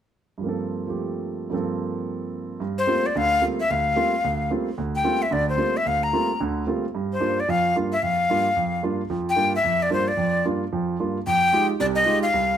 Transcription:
0.38 grand piano G2 F3
0.43 grand piano A#3 C4
0.49 grand piano A4
0.87 grand piano F3 A3 G4
1.50 grand piano G2 F3 A#3 C4
1.55 grand piano A4
2.60 grand piano G2
2.78 flute C5
2.87 grand piano G3 A3 A#3 C4 F4
3.06 flute D5
3.15 grand piano D2 D3, flute F5
3.42 grand piano G3 A3 A#3 C4 F4
3.60 flute E5
3.70 grand piano D2, flute F5
3.96 grand piano G3 A3 A#3 C4 F4
4.24 grand piano D2
4.50 grand piano G3 A3 A#3 C4 F4
4.78 grand piano D2
4.96 flute G5
5.04 grand piano G3 A3 A#3 C4 F4
5.22 flute E5
5.31 grand piano D2 D3, flute D5
5.49 flute C5
5.57 grand piano G3 A3 A#3 C4 F4
5.77 flute E5
5.86 grand piano D2, flute F5
6.03 flute A#5
6.13 grand piano G3 A3 A#3 C4 F4
6.40 grand piano D2 D3
6.67 grand piano G3 A3 A#3 C4 F4
6.95 grand piano G2
7.13 flute C5
7.20 grand piano G2 A#3 D4 F4
7.40 flute D5
7.48 grand piano F2 F3, flute F5
7.75 grand piano G2 A#3 D4 F4
7.93 flute E5
8.02 grand piano F2, flute F5
8.30 grand piano G2 A#3 D4 F4
8.56 grand piano F2
8.83 grand piano G2 A#3 D4 F4
9.10 grand piano F2 F3
9.29 flute G5
9.36 grand piano G2 A#3 D4 F4
9.56 flute E5
9.64 grand piano F2
9.82 flute D5
9.90 grand piano G2 A#3 D4 F4, flute C5
10.08 flute D5
10.17 grand piano F2 F3
10.45 grand piano G2 A#3 D4 F4
10.73 grand piano F2 F3
11.00 grand piano G2 A#3 D4 F4
11.27 grand piano F2, flute G5
11.53 grand piano G#3 D#4 F4 G4
11.80 grand piano C2 C3, flute D5
11.95 flute D#5
12.05 grand piano G#3 D#4 F4 G4
12.23 flute F5
12.34 grand piano C2

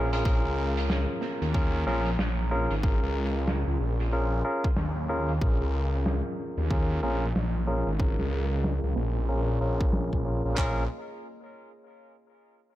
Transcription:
Already playing: detuned saw bass A#1, analog synth pad G#4 C#5
0.13 tine electric piano C#4 F4 G#4 A#4, closed hi-hat
0.25 detuned saw bass A#1, tine electric piano C#4 F4 G#4 A#4, analog synth pad A#5, kick, closed hi-hat
0.45 detuned saw bass C#2
0.77 closed hi-hat
0.90 snare, closed hi-hat
1.21 snare
1.42 detuned saw bass D#2, closed hi-hat
1.54 tine electric piano C#4 F4 G#4 A#4, kick, closed hi-hat
1.87 detuned saw bass A#1, tine electric piano C#4 F4 G#4 A#4, snare
2.06 closed hi-hat
2.19 detuned saw bass A#1, snare, closed hi-hat
2.51 tine electric piano C#4 F4 G#4 A#4
2.71 detuned saw bass G#1, closed hi-hat
2.83 tine electric piano C#4 F4 G#4 A#4, kick, closed hi-hat
3.03 detuned saw bass C#2
3.25 closed hi-hat
3.47 snare, closed hi-hat
3.67 detuned saw bass C#2
3.80 detuned saw bass A#1
4.00 closed hi-hat
4.12 tine electric piano C#4 F4 G#4 A#4, closed hi-hat
4.45 tine electric piano C#4 F4 G#4 A#4
4.64 kick, closed hi-hat
4.76 detuned saw bass D#2, snare, closed hi-hat
5.09 tine electric piano C#4 F4 G#4 A#4
5.29 closed hi-hat
5.41 detuned saw bass A#1, tine electric piano C#4 F4 G#4 A#4, analog synth pad D#5, kick, closed hi-hat
5.61 detuned saw bass C#2
5.93 closed hi-hat
6.06 snare, closed hi-hat
6.57 detuned saw bass D#2, closed hi-hat
6.71 tine electric piano C#4 F4 G#4 A#4, kick
7.03 detuned saw bass A#1, tine electric piano C#4 F4 G#4 A#4, snare
7.22 closed hi-hat
7.35 detuned saw bass A#1, snare, closed hi-hat
7.67 tine electric piano C#4 F4 G#4 A#4
7.87 detuned saw bass G#1, closed hi-hat
8.00 tine electric piano C#4 F4 G#4 A#4, kick
8.09 closed hi-hat
8.19 detuned saw bass C#2, snare
8.52 closed hi-hat
8.64 snare
8.84 detuned saw bass C#2
8.96 detuned saw bass A#1, snare
9.16 closed hi-hat
9.28 tine electric piano C#4 F4 G#4 A#4, closed hi-hat
9.61 detuned saw bass A#1, tine electric piano C#4 F4 G#4 A#4
9.81 kick
9.93 snare
10.13 detuned saw bass A#1, kick
10.25 tine electric piano C#4 F4 G#4 A#4
10.45 detuned saw bass A#1, tine electric piano C#4 F4 G#4 A#4, closed hi-hat
10.58 detuned saw bass A#1, tine electric piano C#4 F4 G#4 A#4, kick, clap

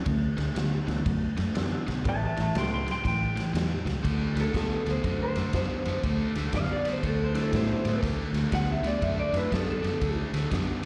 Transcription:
0.05 fingered electric bass D2, overdriven electric guitar D3 A3, kick, ride
0.37 fingered electric bass D2, overdriven electric guitar D3 A3, snare, ride
0.55 fingered electric bass D2, overdriven electric guitar D3 B3, snare, ride
0.87 fingered electric bass D2, overdriven electric guitar D3 B3, tonewheel organ E3 F#3 C4 D4, snare, ride
1.05 fingered electric bass F#2, overdriven electric guitar D3 A3, kick, ride
1.37 fingered electric bass F#2, overdriven electric guitar D3 A3, snare, ride
1.55 fingered electric bass F#2, overdriven electric guitar D3 B3, tonewheel organ E3 F#3 C4 D4, snare, ride
1.87 fingered electric bass B1, overdriven electric guitar D3 B3, snare, ride
2.04 fingered electric bass A1, overdriven electric guitar A2 E3, tonewheel organ G3 A3 B3 C#4, kick, ride
2.08 electric slide guitar E5 A5
2.25 electric slide guitar E5 A5
2.37 fingered electric bass A1, overdriven electric guitar A2 E3, snare, ride
2.41 electric slide guitar E5 A5
2.55 fingered electric bass C#2, overdriven electric guitar A2 F#3, tonewheel organ G3 A3 B3 C#4, electric slide guitar G5 C6, snare, ride
2.74 electric slide guitar G5 C6
2.87 overdriven electric guitar A2 F#3, snare, ride
2.91 electric slide guitar G5 C6
3.04 fingered electric bass A1, overdriven electric guitar A2 E3, electric slide guitar G5, kick, snare, ride
3.36 overdriven electric guitar A2 E3, snare, ride
3.53 fingered electric bass E2, overdriven electric guitar A2 F#3, snare, ride
3.85 fingered electric bass C#2, overdriven electric guitar A2 F#3, snare, ride
4.03 fingered electric bass D2, overdriven electric guitar D3 A3, kick, ride
4.35 fingered electric bass D2, overdriven electric guitar D3 A3, snare, ride
4.41 electric slide guitar A4
4.53 fingered electric bass D2, overdriven electric guitar D3 B3, kick, snare, ride
4.58 electric slide guitar A4
4.86 fingered electric bass D2, overdriven electric guitar D3 B3, snare, ride
4.91 electric slide guitar C5
5.03 fingered electric bass F#2, overdriven electric guitar D3 A3, kick, ride
5.23 electric slide guitar C5
5.35 fingered electric bass F#2, overdriven electric guitar D3 A3, snare, ride
5.53 fingered electric bass F#2, overdriven electric guitar D3 B3, electric slide guitar C5, kick, snare, ride
5.85 fingered electric bass F#2, overdriven electric guitar D3 B3, snare, ride
6.03 fingered electric bass D2, overdriven electric guitar D3 A3, kick, ride
6.35 fingered electric bass D2, overdriven electric guitar D3 A3, snare, ride
6.53 fingered electric bass F#2, overdriven electric guitar D3 B3, electric slide guitar F5, kick, snare, ride
6.72 electric slide guitar D5
6.85 overdriven electric guitar D3 B3, snare, ride
6.91 electric slide guitar C5
7.03 fingered electric bass D2, overdriven electric guitar D3 A3, electric slide guitar A4, kick, ride
7.24 electric slide guitar C5
7.34 overdriven electric guitar D3 A3, tonewheel organ F#3 A3 C4 D4 E4, snare, ride
7.40 electric slide guitar A4
7.52 fingered electric bass A2, overdriven electric guitar D3 B3, kick, snare, ride
7.56 electric slide guitar C5
7.85 fingered electric bass A2, overdriven electric guitar D3 B3, snare, ride
8.02 fingered electric bass D2, overdriven electric guitar D3 A3, kick, snare, ride
8.33 fingered electric bass D2, overdriven electric guitar D3 A3, snare, ride
8.51 fingered electric bass D2, overdriven electric guitar D3 B3, electric slide guitar F#5, kick, snare, ride
8.72 electric slide guitar E5
8.82 fingered electric bass D2, overdriven electric guitar D3 B3, snare, ride
8.86 electric slide guitar D5
9.01 fingered electric bass F#2, overdriven electric guitar D3 A3, electric slide guitar E5, kick, ride
9.20 electric slide guitar D5
9.32 fingered electric bass F#2, overdriven electric guitar D3 A3, tonewheel organ F#3 A3 C4 D4 E4, snare, ride
9.37 electric slide guitar B4
9.50 fingered electric bass F#2, overdriven electric guitar D3 B3, electric slide guitar A4, kick, snare, ride
9.70 electric slide guitar A4
9.82 fingered electric bass F#2, overdriven electric guitar D3 B3, snare, ride
10.01 fingered electric bass D2, overdriven electric guitar D3 A3, kick, ride
10.33 fingered electric bass D2, overdriven electric guitar D3 A3, snare, ride
10.51 fingered electric bass F#2, overdriven electric guitar D3 B3, kick, snare, ride

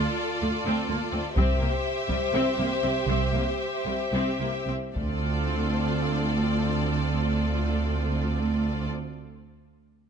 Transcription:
Already playing: viola section F4, violin section A4 D5
0.42 cello section D2, viola section A3
0.65 cello section D2, viola section C4
0.89 cello section D2, viola section A#3
1.12 cello section D2, viola section C4
1.36 cello section C2, double bass section C2, viola section C4 G4, violin section C5 E5, taiko
1.60 cello section C2, viola section A#3
2.09 cello section C2, viola section G3, taiko
2.33 cello section C2, viola section C4
2.58 cello section C2, viola section A#3
2.83 cello section C2, viola section C4
3.08 cello section C2, double bass section C2, viola section C4
3.34 cello section C2, viola section A#3
3.86 cello section C2, viola section G3
4.13 cello section C2, viola section C4
4.40 cello section C2, viola section A#3
4.67 cello section C2, viola section C4
4.95 cello section D2, double bass section D2, viola section C4 F4, violin section A4 D5, taiko

